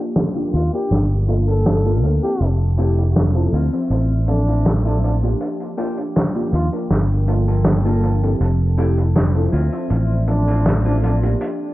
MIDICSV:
0, 0, Header, 1, 8, 480
1, 0, Start_track
1, 0, Tempo, 750000
1, 1540, Time_signature, 4, 2, 24, 8
1, 7513, End_track
2, 0, Start_track
2, 0, Title_t, "Ambient pad"
2, 0, Program_c, 0, 92
2, 0, Note_on_c, 0, 53, 78
2, 0, Note_on_c, 0, 79, 70
2, 0, Note_on_c, 0, 86, 85
2, 570, Note_off_c, 0, 86, 0
2, 578, Note_on_c, 0, 58, 74
2, 578, Note_on_c, 0, 81, 88
2, 1529, Note_off_c, 0, 58, 0
2, 1540, Note_on_c, 0, 76, 69
2, 2235, Note_off_c, 0, 79, 0
2, 2242, Note_off_c, 0, 81, 0
2, 2253, Note_off_c, 0, 76, 0
2, 2260, Note_on_c, 0, 76, 72
2, 2260, Note_on_c, 0, 84, 85
2, 2261, Note_on_c, 0, 74, 70
2, 3436, Note_off_c, 0, 53, 0
2, 3448, Note_off_c, 0, 76, 0
2, 3448, Note_off_c, 0, 84, 0
2, 3449, Note_off_c, 0, 74, 0
2, 3458, Note_on_c, 0, 53, 76
2, 3458, Note_on_c, 0, 79, 71
2, 3459, Note_on_c, 0, 86, 84
2, 4410, Note_off_c, 0, 86, 0
2, 4418, Note_on_c, 0, 58, 73
2, 4418, Note_on_c, 0, 81, 88
2, 5370, Note_off_c, 0, 58, 0
2, 5379, Note_on_c, 0, 76, 72
2, 6074, Note_off_c, 0, 79, 0
2, 6083, Note_off_c, 0, 81, 0
2, 6098, Note_on_c, 0, 74, 72
2, 6098, Note_on_c, 0, 84, 88
2, 7274, Note_off_c, 0, 53, 0
2, 7280, Note_off_c, 0, 76, 0
2, 7287, Note_off_c, 0, 74, 0
2, 7287, Note_off_c, 0, 84, 0
2, 7299, Note_on_c, 0, 79, 70
2, 7300, Note_on_c, 0, 53, 80
2, 7300, Note_on_c, 0, 86, 86
2, 7513, Note_off_c, 0, 53, 0
2, 7513, Note_off_c, 0, 79, 0
2, 7513, Note_off_c, 0, 86, 0
2, 7513, End_track
3, 0, Start_track
3, 0, Title_t, "FM electric piano"
3, 0, Program_c, 1, 5
3, 0, Note_on_c, 1, 58, 86
3, 0, Note_on_c, 1, 62, 81
3, 0, Note_on_c, 1, 65, 80
3, 0, Note_on_c, 1, 67, 97
3, 195, Note_off_c, 1, 58, 0
3, 197, Note_off_c, 1, 62, 0
3, 198, Note_off_c, 1, 65, 0
3, 200, Note_off_c, 1, 67, 0
3, 222, Note_on_c, 1, 58, 84
3, 225, Note_on_c, 1, 62, 77
3, 230, Note_on_c, 1, 65, 76
3, 232, Note_on_c, 1, 67, 95
3, 434, Note_off_c, 1, 58, 0
3, 436, Note_off_c, 1, 62, 0
3, 438, Note_off_c, 1, 65, 0
3, 439, Note_off_c, 1, 67, 0
3, 464, Note_on_c, 1, 58, 81
3, 468, Note_on_c, 1, 62, 73
3, 471, Note_on_c, 1, 65, 73
3, 473, Note_on_c, 1, 70, 88
3, 792, Note_off_c, 1, 58, 0
3, 793, Note_off_c, 1, 62, 0
3, 795, Note_off_c, 1, 65, 0
3, 796, Note_off_c, 1, 70, 0
3, 817, Note_on_c, 1, 58, 73
3, 818, Note_on_c, 1, 62, 67
3, 821, Note_on_c, 1, 65, 67
3, 824, Note_on_c, 1, 69, 82
3, 1155, Note_off_c, 1, 58, 0
3, 1156, Note_off_c, 1, 62, 0
3, 1157, Note_off_c, 1, 65, 0
3, 1159, Note_off_c, 1, 69, 0
3, 1182, Note_on_c, 1, 58, 88
3, 1184, Note_on_c, 1, 62, 80
3, 1188, Note_on_c, 1, 65, 82
3, 1191, Note_on_c, 1, 69, 98
3, 1394, Note_off_c, 1, 58, 0
3, 1395, Note_off_c, 1, 62, 0
3, 1397, Note_off_c, 1, 65, 0
3, 1399, Note_off_c, 1, 69, 0
3, 1421, Note_on_c, 1, 60, 76
3, 1425, Note_on_c, 1, 64, 69
3, 1430, Note_on_c, 1, 67, 72
3, 1431, Note_on_c, 1, 69, 87
3, 1750, Note_off_c, 1, 60, 0
3, 1752, Note_off_c, 1, 64, 0
3, 1755, Note_off_c, 1, 67, 0
3, 1755, Note_off_c, 1, 69, 0
3, 1775, Note_on_c, 1, 60, 89
3, 1779, Note_on_c, 1, 64, 81
3, 1781, Note_on_c, 1, 67, 80
3, 1786, Note_on_c, 1, 69, 96
3, 2114, Note_off_c, 1, 60, 0
3, 2116, Note_off_c, 1, 64, 0
3, 2117, Note_off_c, 1, 67, 0
3, 2119, Note_off_c, 1, 69, 0
3, 2141, Note_on_c, 1, 60, 83
3, 2144, Note_on_c, 1, 64, 80
3, 2147, Note_on_c, 1, 65, 79
3, 2152, Note_on_c, 1, 69, 95
3, 2354, Note_off_c, 1, 60, 0
3, 2355, Note_off_c, 1, 64, 0
3, 2357, Note_off_c, 1, 65, 0
3, 2359, Note_off_c, 1, 69, 0
3, 2384, Note_on_c, 1, 60, 81
3, 2389, Note_on_c, 1, 76, 73
3, 2391, Note_on_c, 1, 53, 72
3, 2395, Note_on_c, 1, 72, 88
3, 2712, Note_off_c, 1, 60, 0
3, 2714, Note_off_c, 1, 76, 0
3, 2715, Note_off_c, 1, 53, 0
3, 2717, Note_off_c, 1, 72, 0
3, 2737, Note_on_c, 1, 60, 74
3, 2740, Note_on_c, 1, 76, 68
3, 2744, Note_on_c, 1, 53, 67
3, 2746, Note_on_c, 1, 69, 83
3, 3075, Note_off_c, 1, 60, 0
3, 3076, Note_off_c, 1, 76, 0
3, 3079, Note_off_c, 1, 53, 0
3, 3080, Note_off_c, 1, 69, 0
3, 3105, Note_on_c, 1, 60, 85
3, 3108, Note_on_c, 1, 76, 78
3, 3109, Note_on_c, 1, 53, 78
3, 3113, Note_on_c, 1, 69, 97
3, 3316, Note_off_c, 1, 60, 0
3, 3317, Note_off_c, 1, 76, 0
3, 3318, Note_off_c, 1, 53, 0
3, 3320, Note_off_c, 1, 69, 0
3, 3342, Note_on_c, 1, 58, 77
3, 3347, Note_on_c, 1, 62, 69
3, 3350, Note_on_c, 1, 65, 69
3, 3352, Note_on_c, 1, 67, 85
3, 3671, Note_off_c, 1, 58, 0
3, 3673, Note_off_c, 1, 62, 0
3, 3674, Note_off_c, 1, 65, 0
3, 3676, Note_off_c, 1, 67, 0
3, 3695, Note_on_c, 1, 58, 90
3, 3698, Note_on_c, 1, 62, 79
3, 3701, Note_on_c, 1, 65, 78
3, 3704, Note_on_c, 1, 67, 93
3, 4034, Note_off_c, 1, 58, 0
3, 4036, Note_off_c, 1, 62, 0
3, 4037, Note_off_c, 1, 65, 0
3, 4039, Note_off_c, 1, 67, 0
3, 4062, Note_on_c, 1, 58, 83
3, 4064, Note_on_c, 1, 62, 80
3, 4067, Note_on_c, 1, 65, 75
3, 4071, Note_on_c, 1, 67, 94
3, 4274, Note_off_c, 1, 58, 0
3, 4275, Note_off_c, 1, 62, 0
3, 4277, Note_off_c, 1, 65, 0
3, 4279, Note_off_c, 1, 67, 0
3, 4301, Note_on_c, 1, 58, 78
3, 4306, Note_on_c, 1, 62, 74
3, 4308, Note_on_c, 1, 65, 75
3, 4310, Note_on_c, 1, 70, 90
3, 4630, Note_off_c, 1, 58, 0
3, 4633, Note_off_c, 1, 62, 0
3, 4633, Note_off_c, 1, 65, 0
3, 4635, Note_off_c, 1, 70, 0
3, 4656, Note_on_c, 1, 58, 72
3, 4659, Note_on_c, 1, 62, 69
3, 4662, Note_on_c, 1, 65, 65
3, 4666, Note_on_c, 1, 69, 80
3, 4995, Note_off_c, 1, 58, 0
3, 4996, Note_off_c, 1, 62, 0
3, 4997, Note_off_c, 1, 65, 0
3, 5000, Note_off_c, 1, 69, 0
3, 5023, Note_on_c, 1, 58, 86
3, 5027, Note_on_c, 1, 62, 77
3, 5029, Note_on_c, 1, 65, 80
3, 5033, Note_on_c, 1, 69, 95
3, 5235, Note_off_c, 1, 58, 0
3, 5237, Note_off_c, 1, 62, 0
3, 5238, Note_off_c, 1, 65, 0
3, 5240, Note_off_c, 1, 69, 0
3, 5263, Note_on_c, 1, 60, 75
3, 5265, Note_on_c, 1, 64, 70
3, 5268, Note_on_c, 1, 67, 68
3, 5273, Note_on_c, 1, 69, 83
3, 5591, Note_off_c, 1, 60, 0
3, 5592, Note_off_c, 1, 64, 0
3, 5594, Note_off_c, 1, 67, 0
3, 5596, Note_off_c, 1, 69, 0
3, 5614, Note_on_c, 1, 60, 84
3, 5618, Note_on_c, 1, 64, 80
3, 5623, Note_on_c, 1, 67, 80
3, 5625, Note_on_c, 1, 69, 95
3, 5954, Note_off_c, 1, 60, 0
3, 5955, Note_off_c, 1, 64, 0
3, 5958, Note_off_c, 1, 67, 0
3, 5959, Note_off_c, 1, 69, 0
3, 5980, Note_on_c, 1, 60, 85
3, 5984, Note_on_c, 1, 64, 77
3, 5986, Note_on_c, 1, 65, 78
3, 5991, Note_on_c, 1, 69, 94
3, 6193, Note_off_c, 1, 60, 0
3, 6195, Note_off_c, 1, 64, 0
3, 6196, Note_off_c, 1, 65, 0
3, 6199, Note_off_c, 1, 69, 0
3, 6221, Note_on_c, 1, 60, 82
3, 6223, Note_on_c, 1, 76, 75
3, 6226, Note_on_c, 1, 53, 75
3, 6230, Note_on_c, 1, 72, 90
3, 6550, Note_off_c, 1, 60, 0
3, 6551, Note_off_c, 1, 76, 0
3, 6552, Note_off_c, 1, 53, 0
3, 6555, Note_off_c, 1, 72, 0
3, 6572, Note_on_c, 1, 60, 74
3, 6575, Note_on_c, 1, 76, 68
3, 6579, Note_on_c, 1, 53, 68
3, 6582, Note_on_c, 1, 69, 82
3, 6913, Note_off_c, 1, 60, 0
3, 6914, Note_off_c, 1, 76, 0
3, 6916, Note_off_c, 1, 53, 0
3, 6918, Note_off_c, 1, 69, 0
3, 6941, Note_on_c, 1, 60, 87
3, 6943, Note_on_c, 1, 76, 79
3, 6948, Note_on_c, 1, 53, 79
3, 6951, Note_on_c, 1, 69, 98
3, 7154, Note_off_c, 1, 60, 0
3, 7155, Note_off_c, 1, 76, 0
3, 7157, Note_off_c, 1, 53, 0
3, 7159, Note_off_c, 1, 69, 0
3, 7179, Note_on_c, 1, 58, 78
3, 7181, Note_on_c, 1, 62, 70
3, 7184, Note_on_c, 1, 65, 72
3, 7189, Note_on_c, 1, 67, 86
3, 7509, Note_off_c, 1, 58, 0
3, 7510, Note_off_c, 1, 62, 0
3, 7512, Note_off_c, 1, 65, 0
3, 7513, Note_off_c, 1, 67, 0
3, 7513, End_track
4, 0, Start_track
4, 0, Title_t, "Clean electric guitar"
4, 0, Program_c, 2, 27
4, 946, Note_on_c, 2, 69, 86
4, 949, Note_on_c, 2, 65, 70
4, 950, Note_on_c, 2, 58, 64
4, 1060, Note_off_c, 2, 58, 0
4, 1061, Note_off_c, 2, 65, 0
4, 1061, Note_off_c, 2, 69, 0
4, 1184, Note_on_c, 2, 69, 85
4, 1188, Note_on_c, 2, 65, 72
4, 1189, Note_on_c, 2, 58, 69
4, 1482, Note_off_c, 2, 58, 0
4, 1484, Note_off_c, 2, 65, 0
4, 1484, Note_off_c, 2, 69, 0
4, 1779, Note_on_c, 2, 64, 100
4, 1782, Note_on_c, 2, 67, 107
4, 1783, Note_on_c, 2, 57, 88
4, 1907, Note_off_c, 2, 57, 0
4, 1907, Note_off_c, 2, 64, 0
4, 1908, Note_off_c, 2, 67, 0
4, 2259, Note_on_c, 2, 64, 76
4, 2263, Note_on_c, 2, 65, 89
4, 2264, Note_on_c, 2, 60, 70
4, 2650, Note_off_c, 2, 60, 0
4, 2650, Note_off_c, 2, 64, 0
4, 2651, Note_off_c, 2, 65, 0
4, 2865, Note_on_c, 2, 64, 71
4, 2870, Note_on_c, 2, 65, 82
4, 2871, Note_on_c, 2, 60, 68
4, 2980, Note_off_c, 2, 60, 0
4, 2980, Note_off_c, 2, 64, 0
4, 2981, Note_off_c, 2, 65, 0
4, 3103, Note_on_c, 2, 64, 73
4, 3107, Note_on_c, 2, 65, 82
4, 3110, Note_on_c, 2, 60, 70
4, 3403, Note_off_c, 2, 60, 0
4, 3403, Note_off_c, 2, 64, 0
4, 3403, Note_off_c, 2, 65, 0
4, 3698, Note_on_c, 2, 67, 111
4, 3700, Note_on_c, 2, 65, 83
4, 3703, Note_on_c, 2, 62, 90
4, 3826, Note_off_c, 2, 62, 0
4, 3827, Note_off_c, 2, 65, 0
4, 3827, Note_off_c, 2, 67, 0
4, 4787, Note_on_c, 2, 69, 82
4, 4789, Note_on_c, 2, 65, 70
4, 4791, Note_on_c, 2, 58, 70
4, 4900, Note_off_c, 2, 58, 0
4, 4901, Note_off_c, 2, 65, 0
4, 4901, Note_off_c, 2, 69, 0
4, 5027, Note_on_c, 2, 69, 89
4, 5031, Note_on_c, 2, 65, 65
4, 5032, Note_on_c, 2, 58, 77
4, 5324, Note_off_c, 2, 58, 0
4, 5325, Note_off_c, 2, 65, 0
4, 5325, Note_off_c, 2, 69, 0
4, 5617, Note_on_c, 2, 64, 93
4, 5619, Note_on_c, 2, 67, 104
4, 5620, Note_on_c, 2, 57, 92
4, 5745, Note_off_c, 2, 57, 0
4, 5746, Note_off_c, 2, 64, 0
4, 5746, Note_off_c, 2, 67, 0
4, 6095, Note_on_c, 2, 64, 74
4, 6099, Note_on_c, 2, 65, 90
4, 6102, Note_on_c, 2, 60, 61
4, 6489, Note_off_c, 2, 60, 0
4, 6489, Note_off_c, 2, 64, 0
4, 6489, Note_off_c, 2, 65, 0
4, 6704, Note_on_c, 2, 64, 71
4, 6708, Note_on_c, 2, 65, 80
4, 6709, Note_on_c, 2, 60, 73
4, 6819, Note_off_c, 2, 60, 0
4, 6820, Note_off_c, 2, 64, 0
4, 6820, Note_off_c, 2, 65, 0
4, 6943, Note_on_c, 2, 64, 69
4, 6946, Note_on_c, 2, 65, 82
4, 6949, Note_on_c, 2, 60, 72
4, 7242, Note_off_c, 2, 60, 0
4, 7243, Note_off_c, 2, 64, 0
4, 7243, Note_off_c, 2, 65, 0
4, 7513, End_track
5, 0, Start_track
5, 0, Title_t, "Flugelhorn"
5, 0, Program_c, 3, 56
5, 341, Note_on_c, 3, 65, 86
5, 442, Note_off_c, 3, 65, 0
5, 468, Note_on_c, 3, 67, 86
5, 631, Note_off_c, 3, 67, 0
5, 948, Note_on_c, 3, 69, 89
5, 1233, Note_off_c, 3, 69, 0
5, 1427, Note_on_c, 3, 67, 86
5, 1591, Note_off_c, 3, 67, 0
5, 2739, Note_on_c, 3, 62, 88
5, 3031, Note_off_c, 3, 62, 0
5, 3109, Note_on_c, 3, 62, 78
5, 3181, Note_off_c, 3, 62, 0
5, 3221, Note_on_c, 3, 62, 69
5, 3302, Note_off_c, 3, 62, 0
5, 4179, Note_on_c, 3, 65, 84
5, 4281, Note_off_c, 3, 65, 0
5, 6583, Note_on_c, 3, 62, 86
5, 6873, Note_off_c, 3, 62, 0
5, 6947, Note_on_c, 3, 62, 80
5, 7020, Note_off_c, 3, 62, 0
5, 7064, Note_on_c, 3, 62, 74
5, 7143, Note_off_c, 3, 62, 0
5, 7513, End_track
6, 0, Start_track
6, 0, Title_t, "Fingered electric bass"
6, 0, Program_c, 4, 33
6, 341, Note_on_c, 4, 39, 78
6, 438, Note_off_c, 4, 39, 0
6, 579, Note_on_c, 4, 31, 85
6, 1300, Note_off_c, 4, 31, 0
6, 1300, Note_on_c, 4, 38, 82
6, 1397, Note_off_c, 4, 38, 0
6, 1539, Note_on_c, 4, 29, 90
6, 2217, Note_off_c, 4, 29, 0
6, 2257, Note_on_c, 4, 38, 83
6, 2355, Note_off_c, 4, 38, 0
6, 2497, Note_on_c, 4, 33, 81
6, 3416, Note_off_c, 4, 33, 0
6, 4177, Note_on_c, 4, 39, 80
6, 4276, Note_off_c, 4, 39, 0
6, 4418, Note_on_c, 4, 31, 89
6, 5337, Note_off_c, 4, 31, 0
6, 5378, Note_on_c, 4, 29, 87
6, 6057, Note_off_c, 4, 29, 0
6, 6098, Note_on_c, 4, 38, 81
6, 6196, Note_off_c, 4, 38, 0
6, 6339, Note_on_c, 4, 33, 81
6, 7257, Note_off_c, 4, 33, 0
6, 7513, End_track
7, 0, Start_track
7, 0, Title_t, "Muted clean electric guitar strokes"
7, 819, Note_on_c, 9, 29, 94
7, 883, Note_off_c, 9, 29, 0
7, 2021, Note_on_c, 9, 29, 34
7, 2085, Note_off_c, 9, 29, 0
7, 2739, Note_on_c, 9, 29, 112
7, 2803, Note_off_c, 9, 29, 0
7, 3936, Note_on_c, 9, 29, 30
7, 4000, Note_off_c, 9, 29, 0
7, 4657, Note_on_c, 9, 29, 98
7, 4721, Note_off_c, 9, 29, 0
7, 6579, Note_on_c, 9, 29, 122
7, 6643, Note_off_c, 9, 29, 0
7, 7513, End_track
8, 0, Start_track
8, 0, Title_t, "Drums"
8, 100, Note_on_c, 9, 38, 112
8, 101, Note_on_c, 9, 42, 72
8, 164, Note_off_c, 9, 38, 0
8, 165, Note_off_c, 9, 42, 0
8, 347, Note_on_c, 9, 42, 77
8, 411, Note_off_c, 9, 42, 0
8, 468, Note_on_c, 9, 42, 63
8, 532, Note_off_c, 9, 42, 0
8, 584, Note_on_c, 9, 42, 86
8, 588, Note_on_c, 9, 38, 61
8, 648, Note_off_c, 9, 42, 0
8, 652, Note_off_c, 9, 38, 0
8, 823, Note_on_c, 9, 42, 78
8, 887, Note_off_c, 9, 42, 0
8, 952, Note_on_c, 9, 42, 60
8, 1016, Note_off_c, 9, 42, 0
8, 1062, Note_on_c, 9, 42, 77
8, 1063, Note_on_c, 9, 38, 115
8, 1126, Note_off_c, 9, 42, 0
8, 1127, Note_off_c, 9, 38, 0
8, 1301, Note_on_c, 9, 42, 76
8, 1365, Note_off_c, 9, 42, 0
8, 1434, Note_on_c, 9, 42, 61
8, 1498, Note_off_c, 9, 42, 0
8, 1543, Note_on_c, 9, 42, 82
8, 1607, Note_off_c, 9, 42, 0
8, 1783, Note_on_c, 9, 42, 81
8, 1847, Note_off_c, 9, 42, 0
8, 1908, Note_on_c, 9, 42, 61
8, 1972, Note_off_c, 9, 42, 0
8, 2023, Note_on_c, 9, 38, 110
8, 2024, Note_on_c, 9, 42, 82
8, 2087, Note_off_c, 9, 38, 0
8, 2088, Note_off_c, 9, 42, 0
8, 2264, Note_on_c, 9, 42, 78
8, 2328, Note_off_c, 9, 42, 0
8, 2387, Note_on_c, 9, 42, 66
8, 2451, Note_off_c, 9, 42, 0
8, 2501, Note_on_c, 9, 42, 84
8, 2565, Note_off_c, 9, 42, 0
8, 2738, Note_on_c, 9, 42, 82
8, 2802, Note_off_c, 9, 42, 0
8, 2867, Note_on_c, 9, 42, 56
8, 2931, Note_off_c, 9, 42, 0
8, 2976, Note_on_c, 9, 42, 87
8, 2982, Note_on_c, 9, 38, 106
8, 3040, Note_off_c, 9, 42, 0
8, 3046, Note_off_c, 9, 38, 0
8, 3226, Note_on_c, 9, 42, 84
8, 3290, Note_off_c, 9, 42, 0
8, 3351, Note_on_c, 9, 42, 60
8, 3415, Note_off_c, 9, 42, 0
8, 3461, Note_on_c, 9, 42, 87
8, 3525, Note_off_c, 9, 42, 0
8, 3587, Note_on_c, 9, 42, 52
8, 3651, Note_off_c, 9, 42, 0
8, 3700, Note_on_c, 9, 42, 83
8, 3764, Note_off_c, 9, 42, 0
8, 3825, Note_on_c, 9, 42, 60
8, 3889, Note_off_c, 9, 42, 0
8, 3942, Note_on_c, 9, 42, 72
8, 3945, Note_on_c, 9, 38, 101
8, 4006, Note_off_c, 9, 42, 0
8, 4009, Note_off_c, 9, 38, 0
8, 4184, Note_on_c, 9, 42, 80
8, 4248, Note_off_c, 9, 42, 0
8, 4306, Note_on_c, 9, 42, 60
8, 4370, Note_off_c, 9, 42, 0
8, 4419, Note_on_c, 9, 38, 63
8, 4419, Note_on_c, 9, 42, 77
8, 4483, Note_off_c, 9, 38, 0
8, 4483, Note_off_c, 9, 42, 0
8, 4658, Note_on_c, 9, 42, 77
8, 4722, Note_off_c, 9, 42, 0
8, 4787, Note_on_c, 9, 42, 61
8, 4851, Note_off_c, 9, 42, 0
8, 4894, Note_on_c, 9, 38, 118
8, 4898, Note_on_c, 9, 42, 77
8, 4958, Note_off_c, 9, 38, 0
8, 4962, Note_off_c, 9, 42, 0
8, 5028, Note_on_c, 9, 42, 46
8, 5092, Note_off_c, 9, 42, 0
8, 5143, Note_on_c, 9, 42, 74
8, 5207, Note_off_c, 9, 42, 0
8, 5270, Note_on_c, 9, 42, 55
8, 5334, Note_off_c, 9, 42, 0
8, 5380, Note_on_c, 9, 42, 79
8, 5444, Note_off_c, 9, 42, 0
8, 5621, Note_on_c, 9, 42, 85
8, 5685, Note_off_c, 9, 42, 0
8, 5745, Note_on_c, 9, 42, 56
8, 5809, Note_off_c, 9, 42, 0
8, 5858, Note_on_c, 9, 42, 80
8, 5862, Note_on_c, 9, 38, 102
8, 5922, Note_off_c, 9, 42, 0
8, 5926, Note_off_c, 9, 38, 0
8, 6101, Note_on_c, 9, 42, 76
8, 6165, Note_off_c, 9, 42, 0
8, 6225, Note_on_c, 9, 42, 60
8, 6289, Note_off_c, 9, 42, 0
8, 6337, Note_on_c, 9, 42, 75
8, 6401, Note_off_c, 9, 42, 0
8, 6578, Note_on_c, 9, 42, 71
8, 6642, Note_off_c, 9, 42, 0
8, 6707, Note_on_c, 9, 42, 62
8, 6771, Note_off_c, 9, 42, 0
8, 6820, Note_on_c, 9, 42, 79
8, 6822, Note_on_c, 9, 38, 106
8, 6884, Note_off_c, 9, 42, 0
8, 6886, Note_off_c, 9, 38, 0
8, 7061, Note_on_c, 9, 42, 76
8, 7125, Note_off_c, 9, 42, 0
8, 7188, Note_on_c, 9, 42, 63
8, 7252, Note_off_c, 9, 42, 0
8, 7301, Note_on_c, 9, 42, 81
8, 7365, Note_off_c, 9, 42, 0
8, 7513, End_track
0, 0, End_of_file